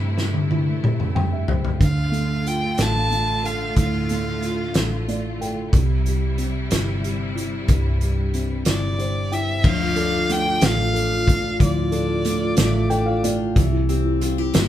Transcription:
Already playing: G2 C3 G3 A3 E4 G4
0.18 G3, snare
0.34 high tom
0.51 E4, high tom
0.84 G4, mid tom
1.00 mid tom
1.15 G3 G5, mid tom
1.32 E5
1.48 G4 C5, floor tom
1.65 floor tom
1.79 D2 D3 A3 F4 F5, kick, closed hi-hat
2.12 A3, closed hi-hat
2.45 F4 G5, closed hi-hat
2.78 A1 A4 A5, snare, closed hi-hat
3.11 A3, closed hi-hat
3.44 A4 F5, closed hi-hat
3.76 D2 A2 F5, kick, closed hi-hat
4.09 A3, closed hi-hat
4.42 F4, closed hi-hat
4.74 A1 A4, snare, closed hi-hat
5.08 A3 D5, closed hi-hat
5.41 A4 G5, closed hi-hat
5.72 C2 C3 G3 E4, kick, closed hi-hat
6.06 G3, closed hi-hat
6.38 C4, closed hi-hat
6.71 G1 E4, snare, closed hi-hat
7.03 G3, closed hi-hat
7.35 E4, closed hi-hat
7.68 C2 G2, kick, closed hi-hat
8.01 G3, closed hi-hat
8.34 C4, closed hi-hat
8.65 G1 E4 D5, snare, closed hi-hat
8.98 G3 C5, closed hi-hat
9.32 E4 E5 G5, closed hi-hat
9.63 D2 D3 F3 F5, kick, crash
9.80 F4
9.96 D4 A4, closed hi-hat
10.11 F4
10.29 A3 F4 G5, closed hi-hat
10.45 F4
10.61 A1 A3 F5, snare, closed hi-hat
10.77 F4
10.94 D4 A4, closed hi-hat
11.12 F4
11.27 A3 F4, kick, closed hi-hat
11.45 F4
11.59 D2 A2 F3 D5, kick, closed hi-hat
11.77 F4
11.92 D4 A4, closed hi-hat
12.07 F4
12.25 A3 F4, closed hi-hat
12.40 F4
12.57 A1 A3, snare, closed hi-hat
12.73 F4
12.89 D4 A4 G5, closed hi-hat
13.06 F4 F5
13.23 A3 F4 D5, closed hi-hat
13.40 F4
13.55 C2 C3 E3, kick, closed hi-hat
13.72 E4
13.89 C4 G4, closed hi-hat
14.05 E4
14.21 G3 F4, closed hi-hat
14.38 E4 G4
14.54 G1 G3 A#3, snare, closed hi-hat

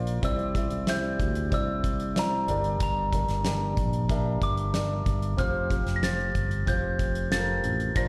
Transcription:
Already playing: A#1 F4 A#4 C5 D5 F5
0.07 closed hi-hat
0.22 C2 C3 E4 G4 C5 D5 E6, kick, closed hi-hat
0.39 closed hi-hat
0.55 E4 G4 C5 E5, kick, closed hi-hat
0.70 C2, closed hi-hat
0.87 E4 G4 C5 E5 G6, snare, closed hi-hat
1.04 closed hi-hat
1.20 D2, kick, closed hi-hat
1.35 closed hi-hat
1.51 C2 E4 G4 C5 D5 E6, kick, closed hi-hat
1.84 kick, closed hi-hat
2.00 closed hi-hat
2.15 E4 G4 C5 D5, snare, closed hi-hat
2.19 A#5
2.47 G1 G2 D4 G4 A#4 D5, closed hi-hat
2.64 closed hi-hat
2.80 G1 A#5, kick, closed hi-hat
3.12 D4 G4 A#4 D5, kick, closed hi-hat
3.28 G1, snare, closed hi-hat
3.44 D4 G4 A#4 D5, snare, closed hi-hat
3.77 A#1, kick, closed hi-hat
3.93 closed hi-hat
4.09 D4 G4 A#4 E5, kick, closed hi-hat
4.41 G1 D6, kick, closed hi-hat
4.57 closed hi-hat
4.73 D4 G4 A#4 D5, snare, closed hi-hat
5.06 G1, kick, closed hi-hat
5.22 closed hi-hat
5.37 F1 C4 F4 G4 C5 F6, kick, closed hi-hat
5.70 C4 F4 G4 C5, kick, closed hi-hat
5.86 F1, snare, closed hi-hat
5.96 A#6
6.02 C4 F4 G4 C5 A6, snare, closed hi-hat
6.20 closed hi-hat
6.35 G1, kick, closed hi-hat
6.51 closed hi-hat
6.66 F1 C4 F4 G4 C5 G6, kick, closed hi-hat
6.99 kick, closed hi-hat
7.15 closed hi-hat
7.31 C4 F4 G4 A4 A6, snare, closed hi-hat
7.39 A#4
7.64 A1, closed hi-hat
7.80 closed hi-hat
7.95 A#1 A#2 D4 F4 A#4 C5 A#6, kick, closed hi-hat

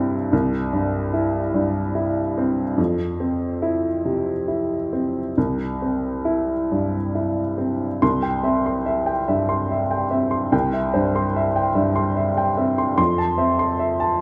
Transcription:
Already playing: C2 G2 C4 E4
0.33 C2
0.73 G2
1.14 E4
1.54 G2
1.95 E4
2.38 C4
2.78 F2
3.20 C4
3.62 E4
4.05 C3
4.48 E4
4.93 C4
5.37 C2
5.82 C4
6.25 E4
6.72 G2
7.15 E4
7.58 C4
8.02 C2 C6
8.22 G5
8.43 C4 E5
8.66 C6
8.86 E5
9.06 G5
9.28 G2 E5
9.49 C6
9.71 E5
9.91 G5
10.11 C4 E5
10.31 C6
10.52 C2 G5
10.73 E5
10.94 G2 C5
11.16 C6
11.36 E5
11.56 G5
11.75 G2 E5
11.96 C6
12.17 E5
12.37 G5
12.57 C4 E5
12.78 C6
12.98 F2 C6
13.18 A5
13.38 C4 E5
13.59 C6
13.79 E5
14.00 A5

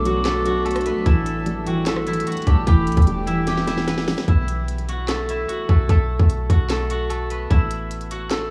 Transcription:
Already playing: B1 F#3 A3 B3 D4 E4 A4 E5 D6
0.05 F#3 F#4 F#5, closed hi-hat
0.25 F#3 A3 A4, snare, clap, closed hi-hat
0.46 F#3 F#4 F#5, closed hi-hat
0.65 A3 A4, closed hi-hat
0.71 closed hi-hat
0.76 cross-stick, closed hi-hat
0.81 closed hi-hat
0.86 A3 B3 B4, closed hi-hat
1.06 A1 E3 A3 E4 G4 E5 A5, kick, closed hi-hat
1.26 closed hi-hat
1.46 G3, closed hi-hat
1.66 E3 F#4 F#5 G5, closed hi-hat
1.86 E3 A3 A4, snare, clap, closed hi-hat
1.96 cross-stick
2.07 E3 E4 E5, closed hi-hat
2.13 closed hi-hat
2.20 closed hi-hat
2.27 F#4 F#5, closed hi-hat
2.32 closed hi-hat
2.37 closed hi-hat
2.42 closed hi-hat
2.47 A1 G3 G4 G5 A5, kick, closed hi-hat
2.67 E1 E3 B3 G4 G5 B5, kick, closed hi-hat
2.87 B1, closed hi-hat
2.92 closed hi-hat
2.97 E1, kick, closed hi-hat
3.02 closed hi-hat
3.07 G3 G5, closed hi-hat
3.27 E3 E4 E5, closed hi-hat
3.47 E3 G4 G5, snare, closed hi-hat
3.58 snare
3.67 E3 E4 E5, snare, closed hi-hat
3.78 snare
3.88 B3 B4, snare, closed hi-hat
3.98 snare
4.08 G3, snare, open hi-hat
4.18 snare
4.28 B1 E4 E5, kick, closed hi-hat
4.48 closed hi-hat
4.68 closed hi-hat
4.78 closed hi-hat
4.89 F#4 F#5, closed hi-hat
5.08 A3 A4, snare, clap, closed hi-hat
5.29 E4 E5, closed hi-hat
5.48 F#4 F#5, closed hi-hat
5.69 B1 A3 A4, kick
5.89 B1 A3 A4, kick, closed hi-hat
6.19 B1, kick
6.30 closed hi-hat
6.50 B1 F#4 F#5, kick, closed hi-hat
6.69 A3 A4, snare, clap, closed hi-hat
6.90 F#4 F#5, closed hi-hat
7.09 A3 A4, closed hi-hat
7.30 B3 B4, closed hi-hat
7.50 A1 E4 E5, kick, closed hi-hat
7.70 closed hi-hat
7.91 closed hi-hat
8.01 closed hi-hat
8.11 F#4 F#5, closed hi-hat
8.30 A3 A4, snare, clap, closed hi-hat

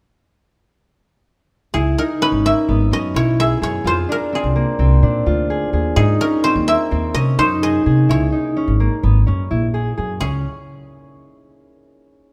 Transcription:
1.74 C#2 E4 G#4
1.98 D#4 A#4
2.21 C#4 B4
2.32 G#1
2.46 A#3 E5
2.69 G#1 B3
2.91 F#2 C#4 D#5
3.14 B1 E4 C#5
3.39 G#4 E5
3.62 F#2 G#4 C#5
3.84 F2 F4 C5
4.09 D4 A#4
4.32 C4 G#4
4.44 C2
4.56 A#3
4.79 C2 C4
5.03 A#2 D4
5.26 D2 F4
5.50 G#4
5.73 D#2 G#4
5.96 G#2 D#4 G#4
6.21 C#4 A#4
6.44 C4 C5
6.56 D#2
6.68 A#3 E5
6.91 D#2 C4
7.14 C3 C#4 D#5
7.38 F#2 D#4 C5
7.62 G#4 D#5
7.86 C3 G#4
8.09 C#2 E4 C#5
8.32 D#4
8.57 C#4
8.68 G#1
8.80 A#3
9.03 G#1 B3
9.27 F#2 C#4
9.51 A#1 E4
9.74 G#4
9.97 F#2 G#4
10.21 C#2 C#4 G#4

